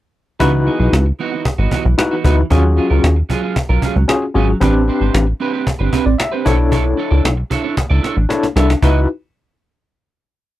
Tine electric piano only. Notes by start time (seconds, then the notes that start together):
0.40 D#4 E4 F#4 B4
1.98 D#4 E4 F#4 B4
2.24 D#4 E4 F#4 B4
2.50 C#4 F4 F#4 G#4
4.08 C#4 F4 F#4 G#4
4.34 C#4 F4 F#4 G#4
4.60 C4 D4 G4 B4
6.06 D5
6.18 E5
6.32 C5
6.45 D4 E4 A4 C#5
8.29 D4 E4 A4 C#5
8.56 D4 E4 A4 E5
8.83 D#4 E4 F#4 B4